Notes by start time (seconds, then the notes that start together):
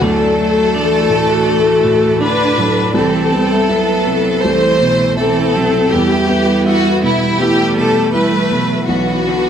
0.01 D2 F#3 A3 D4 F#4 A4
0.21 D5
0.38 A3
0.57 A4
0.74 E3 D4
0.93 D5
1.09 A2 D5
1.29 F#4
1.46 A3 D4
1.65 F#4
1.83 A2 F#4
2.02 F#4
2.20 D3 D4 B4
2.39 D5
2.57 A2 F#3 A4
2.76 D5
2.94 C2 E3 C4 E4 A4
3.14 A5
3.32 G3 B3 A5
3.51 E5
3.69 F#3 B3 E4 A4
3.88 A5
4.06 C3 A5
4.26 C5
4.44 C2 E3 A3 A4 C5
4.62 C5
4.80 B2 C5
4.99 C5
5.17 E3 C4 E4 A4
5.36 A5
5.55 C3 F#3 E5
5.74 A5
5.91 E2 E3 G3 B3 E4 G4
6.11 E5
6.29 B3 E5
6.47 B4
6.66 E4 F#4
6.85 E5
7.03 B2 E4 E5
7.22 G4
7.39 G3 A3 B3 E4 G4
7.60 G4
7.77 B2 G4 A4
7.96 G4
8.13 G3 A3 E4 B4
8.32 E5
8.51 B2 F#3 B4
8.70 E5
8.87 B1 E3 F#3 B3 E4 F#4 B4
9.08 B5
9.27 D3 B3 B5
9.46 F#5